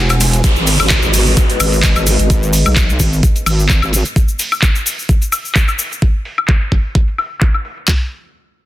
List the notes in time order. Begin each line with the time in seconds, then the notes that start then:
Already playing: E1 E4 B4 F#5 G#5
0.09 closed hi-hat, ride, cabasa, high woodblock
0.20 snare, open hi-hat, ride, cabasa
0.33 snare, closed hi-hat, cabasa
0.44 G#3 F#4 G#4 B4 D#5, kick, closed hi-hat, ride, downlifter, cabasa
0.56 G#1, cabasa
0.67 open hi-hat, ride, cabasa
0.80 G#1, cabasa, high woodblock
0.90 kick, snare, clap, closed hi-hat, ride, cabasa
1.02 G#1, cabasa
1.11 B4, open hi-hat, ride, cabasa
1.26 D#5, cabasa
1.37 kick, closed hi-hat, ride, cabasa
1.50 closed hi-hat, cabasa
1.60 G#1, open hi-hat, ride, cabasa, high woodblock
1.73 cabasa
1.83 kick, snare, clap, closed hi-hat, ride, cabasa
1.96 G#1, cabasa, high woodblock
2.06 open hi-hat, ride, cabasa
2.19 G#1, closed hi-hat, cabasa
2.30 kick, closed hi-hat, cabasa
2.43 cabasa
2.53 open hi-hat, cabasa
2.66 B1, cabasa, high woodblock
2.76 kick, clap, closed hi-hat, cabasa
2.90 cabasa
2.99 G#1, kick, open hi-hat, cabasa
3.13 cabasa
3.23 kick, closed hi-hat, cabasa
3.36 closed hi-hat, cabasa
3.46 G#1, open hi-hat, cabasa, high woodblock
3.60 cabasa
3.69 kick, clap, closed hi-hat, cabasa
3.82 G#1, cabasa, high woodblock
3.93 open hi-hat, cabasa
4.05 closed hi-hat, cabasa
4.16 kick, closed hi-hat, cabasa
4.28 cabasa
4.39 open hi-hat, cabasa
4.52 cabasa, high woodblock
4.62 kick, clap, closed hi-hat, cabasa
4.75 cabasa
4.86 open hi-hat, cabasa
4.99 cabasa
5.09 kick, closed hi-hat, cabasa
5.22 closed hi-hat, cabasa
5.32 open hi-hat, cabasa, high woodblock
5.45 cabasa
5.55 kick, clap, cabasa
5.68 cabasa, high woodblock
5.79 open hi-hat, cabasa
5.92 closed hi-hat, cabasa
6.02 kick, closed hi-hat
6.25 open hi-hat
6.38 closed hi-hat, high woodblock
6.48 kick, clap
6.61 closed hi-hat
6.72 kick, open hi-hat
6.95 kick, closed hi-hat
7.08 closed hi-hat
7.18 open hi-hat, high woodblock
7.41 kick, clap
7.54 high woodblock
7.65 open hi-hat
7.77 closed hi-hat
7.88 kick, clap